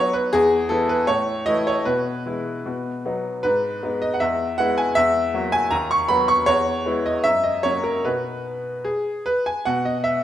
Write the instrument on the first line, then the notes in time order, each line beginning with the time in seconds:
grand piano
Already playing: F#3 B3 D#4 C#5
0.13 B4
0.33 E2 G#4
0.69 E3 B3 E4 A4
0.89 B4
1.07 A2 C#5
1.46 E3 A3 E4 D#5
1.67 C#5
1.85 B2 B4
2.26 E3 G#3 E4
2.66 B2
3.05 F#3 B3 D#4
3.43 G#2 B4
3.83 G#3 B3 D#4
4.02 D#5
4.14 F#5
4.20 E2 E5
4.58 G#3 B3 E4 F#5
4.78 G#5
4.95 E2 E5
5.34 F#3 A#3 F#4
5.52 G#5
5.71 D#2 A#5
5.91 C#6
6.08 F#3 B3 F#4 B5
6.28 C#6
6.46 E2 C#5
6.86 G#3 B3 E4
7.06 D#5
7.24 F#2 E5
7.44 D#5
7.63 F#3 A#3 C#4 C#5
7.84 A#4
8.05 B2 B3 D#4 B4
8.85 G#4
9.26 B4
9.46 G#5
9.65 B2 F#5
9.85 D#5
10.04 E5